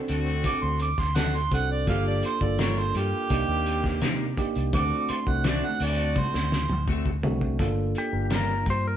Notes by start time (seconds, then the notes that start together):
Already playing: C4 D4 F#4 A4
0.08 D2 A3 C4 D4 F#4, closed hi-hat
0.26 closed hi-hat
0.44 D6, kick, closed hi-hat
0.63 D2 C6
0.80 D6, closed hi-hat
0.98 D2 C6, kick, snare
1.15 D3 C4 F#4 A4 F#5, snare, closed hi-hat
1.34 C6, closed hi-hat
1.51 C2 C4 D4 F#4 A4 F#5, kick, closed hi-hat
1.71 D5
1.87 G1 A#3 D4 F4 G4 A4 F5, kick, closed hi-hat
2.07 D5
2.23 C5, closed hi-hat
2.41 G1 A#3 D4 F4 A4 D5, kick
2.58 G3 D4 F4 A#4 C#5, snare, closed hi-hat
2.76 F4 G4 C5, closed hi-hat
2.95 G2 A#3 D4 F4 G4, closed hi-hat
3.30 C2 A#3 C4 D4 D#4 G4, kick, closed hi-hat
3.48 D#2
3.66 closed hi-hat
3.84 kick, snare
4.01 C3 A#3 D#4 G4, snare, closed hi-hat
4.37 A#3 D4 D#4 G4, kick, closed hi-hat
4.55 C2, closed hi-hat
4.73 D2 A3 C4 D4 F#4 D6, kick, closed hi-hat
5.09 C6, muted fingered electric bass stroke, closed hi-hat
5.27 C2 A3 C4 D4 F#4 F#5, kick
5.44 D3 A3 C4 F#4 D5, snare, closed hi-hat
5.63 D4 F#4 F#5
5.80 D2 A3 C4 D4 F#4 D5, open hi-hat
5.98 closed hi-hat
6.16 C5, kick, high tom
6.34 D2, snare
6.52 snare
6.70 D2, mid tom
6.87 D3 A3 C4 F#4, kick
7.06 kick
7.23 C2 A3 C4 D4 F#4, floor tom
7.41 kick
7.59 G1 A#3 D4 F4 A4, kick, closed hi-hat
7.95 G4, closed hi-hat
8.12 G1 A#3 D4 F4 A#4
8.30 G3 D4 F4 A#4, snare, closed hi-hat
8.35 A#4
8.66 G2, kick, closed hi-hat
8.70 C5
8.87 A#4